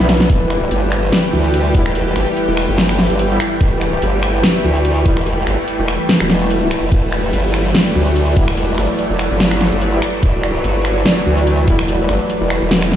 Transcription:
0.00 0.28 B1 medium
0.00 12.96 E3 medium
0.00 0.28 F#3 medium
0.00 12.96 G3 medium
0.00 0.26 B3 medium
0.00 12.96 E4 medium
0.00 12.96 B4 medium
0.00 0.95 D5 medium
0.00 swell medium
0.09 snare medium
0.09 open hi-hat loud
0.20 snare medium
0.30 0.70 E1 loud
0.30 12.96 A3 medium
0.30 6.90 G4 medium
0.30 kick loud
0.30 closed hi-hat medium
0.50 finger snap medium
0.50 closed hi-hat medium
0.71 1.11 G1 loud
0.71 closed hi-hat medium
0.92 7.57 G5 medium
0.92 finger snap medium
0.92 closed hi-hat medium
1.12 snare loud
1.12 closed hi-hat medium
1.33 1.73 D2 loud
1.45 closed hi-hat medium
1.54 closed hi-hat medium
1.75 2.14 E1 medium
1.75 1.83 G3 medium
1.75 1.83 B3 medium
1.75 1.83 E4 loud
1.75 kick loud
1.75 open hi-hat loud
1.86 finger snap medium
1.95 closed hi-hat medium
2.16 2.25 G1 loud
2.16 finger snap medium
2.16 closed hi-hat medium
2.37 closed hi-hat medium
2.48 2.67 E1 loud
2.57 finger snap medium
2.57 closed hi-hat medium
2.69 3.08 G1 loud
2.78 snare loud
2.78 closed hi-hat medium
2.89 finger snap medium
2.99 snare medium
3.10 3.39 G1 loud
3.10 closed hi-hat medium
3.19 closed hi-hat medium
3.31 3.38 G3 loud
3.31 3.38 B3 medium
3.31 3.38 E4 loud
3.40 finger snap medium
3.40 open hi-hat medium
3.61 4.01 E1 loud
3.61 kick loud
3.61 closed hi-hat medium
3.81 finger snap soft
3.81 closed hi-hat medium
4.02 4.42 G1 loud
4.02 closed hi-hat medium
4.23 finger snap medium
4.23 closed hi-hat medium
4.43 snare loud
4.43 closed hi-hat medium
4.64 5.04 D2 loud
4.76 closed hi-hat medium
4.85 closed hi-hat medium
5.06 5.45 E1 loud
5.06 5.14 G3 medium
5.06 5.14 B3 medium
5.06 5.14 E4 medium
5.06 kick loud
5.06 open hi-hat medium
5.17 finger snap medium
5.26 closed hi-hat medium
5.47 5.57 G1 loud
5.47 finger snap medium
5.47 closed hi-hat medium
5.68 closed hi-hat medium
5.79 5.98 E1 loud
5.88 finger snap medium
5.88 closed hi-hat medium
6.09 snare loud
6.09 closed hi-hat medium
6.20 6.81 E1 loud
6.20 finger snap medium
6.30 snare medium
6.41 closed hi-hat medium
6.50 closed hi-hat medium
6.62 6.69 G3 medium
6.62 6.69 B3 medium
6.62 6.69 E4 medium
6.71 finger snap medium
6.71 open hi-hat medium
6.82 6.90 E1 loud
6.92 7.32 E1 loud
6.92 12.96 F#3 medium
6.92 kick loud
6.92 closed hi-hat medium
7.12 finger snap medium
7.12 closed hi-hat medium
7.33 7.73 G1 loud
7.33 closed hi-hat medium
7.54 12.96 D5 medium
7.54 finger snap medium
7.54 closed hi-hat medium
7.75 snare loud
7.75 closed hi-hat medium
7.95 8.35 D2 loud
8.07 closed hi-hat soft
8.16 closed hi-hat medium
8.37 8.77 E1 loud
8.37 8.45 G3 medium
8.37 8.45 B3 medium
8.37 8.45 E4 medium
8.37 kick loud
8.37 open hi-hat medium
8.48 finger snap medium
8.57 closed hi-hat medium
8.78 8.88 G1 loud
8.78 finger snap medium
8.78 closed hi-hat soft
8.99 closed hi-hat medium
9.10 9.29 E1 loud
9.19 finger snap medium
9.19 closed hi-hat medium
9.31 9.70 G1 loud
9.40 snare loud
9.40 closed hi-hat medium
9.51 finger snap medium
9.61 snare medium
9.72 10.01 G1 loud
9.72 closed hi-hat soft
9.81 closed hi-hat medium
9.93 10.00 G3 medium
9.93 10.00 B3 medium
9.93 10.00 E4 loud
10.02 finger snap medium
10.02 open hi-hat loud
10.23 10.63 E1 loud
10.23 kick loud
10.23 closed hi-hat medium
10.43 finger snap medium
10.43 closed hi-hat medium
10.64 11.04 G1 loud
10.64 closed hi-hat medium
10.85 finger snap medium
10.85 closed hi-hat medium
11.06 snare loud
11.06 closed hi-hat medium
11.26 11.66 D2 loud
11.38 closed hi-hat medium
11.47 closed hi-hat medium
11.68 12.08 E1 loud
11.68 11.76 G3 medium
11.68 11.76 B3 medium
11.68 11.76 E4 loud
11.68 kick loud
11.68 open hi-hat loud
11.79 finger snap medium
11.88 closed hi-hat medium
12.09 12.19 G1 loud
12.09 finger snap medium
12.09 closed hi-hat medium
12.30 closed hi-hat medium
12.41 12.60 E1 medium
12.50 finger snap medium
12.50 closed hi-hat medium
12.62 12.96 E1 loud
12.71 snare loud
12.71 closed hi-hat medium
12.82 finger snap medium
12.92 snare medium

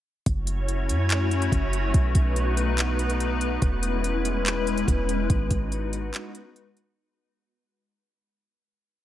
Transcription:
0.26 0.91 F#1 loud
0.26 3.59 A3 medium
0.26 1.93 C#4 medium
0.26 1.93 E4 medium
0.26 3.59 F#4 medium
0.26 1.93 C#5 medium
0.26 kick loud
0.26 closed hi-hat medium
0.47 closed hi-hat medium
0.68 closed hi-hat medium
0.89 1.49 F#2 loud
0.89 closed hi-hat medium
1.10 clap loud
1.10 closed hi-hat medium
1.31 closed hi-hat medium
1.42 closed hi-hat medium
1.52 1.92 F#1 loud
1.52 kick medium
1.52 closed hi-hat medium
1.73 closed hi-hat medium
1.94 2.14 B1 loud
1.94 6.94 B3 medium
1.94 3.60 D#4 medium
1.94 3.60 B4 medium
1.94 kick loud
1.94 closed hi-hat medium
2.15 3.58 B1 loud
2.15 kick medium
2.15 closed hi-hat medium
2.36 closed hi-hat medium
2.57 closed hi-hat medium
2.78 clap loud
2.78 closed hi-hat medium
2.99 closed hi-hat medium
3.10 closed hi-hat medium
3.20 closed hi-hat medium
3.41 closed hi-hat medium
3.62 4.84 E1 loud
3.62 6.94 G#3 medium
3.62 5.28 C#4 medium
3.62 5.28 E4 medium
3.62 6.94 B4 medium
3.62 kick loud
3.62 closed hi-hat medium
3.83 closed hi-hat medium
4.04 closed hi-hat medium
4.25 closed hi-hat medium
4.46 clap loud
4.46 closed hi-hat medium
4.67 closed hi-hat medium
4.78 closed hi-hat medium
4.88 5.28 E1 loud
4.88 kick medium
4.88 closed hi-hat medium
5.09 closed hi-hat medium
5.30 5.50 G#1 loud
5.30 6.96 D#4 medium
5.30 6.96 F#4 medium
5.30 kick loud
5.30 closed hi-hat medium
5.51 6.11 G#1 loud
5.51 kick medium
5.51 closed hi-hat medium
5.72 closed hi-hat medium
5.93 closed hi-hat medium
6.14 clap loud
6.14 closed hi-hat medium
6.35 closed hi-hat medium
6.56 closed hi-hat medium
6.77 closed hi-hat medium

